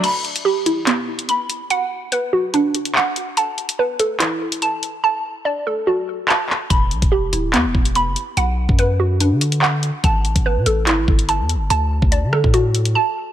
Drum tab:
CC |x---------------|----------------|----------------|----------------|
HH |x-xx--x-x--xx-x-|x---x---x-xx--x-|x-xx--x-x--xx-x-|----------------|
CP |--------x-------|------------x---|--------x-------|------------x-x-|
SD |----------------|----------------|----------------|----------------|
BD |----------------|----------------|----------------|----------------|

CC |----------------|----------------|----------------|----------------|
HH |x-xx--x-x--xx-x-|x---x---x-xx--x-|x-xx--x-x--xx-x-|x---x---x-xx----|
CP |--------x-------|------------x---|--------x-------|----------------|
SD |----------------|----------------|----------------|------r---------|
BD |o--o------o-----|---o------------|o--o------o-----|---o---o--------|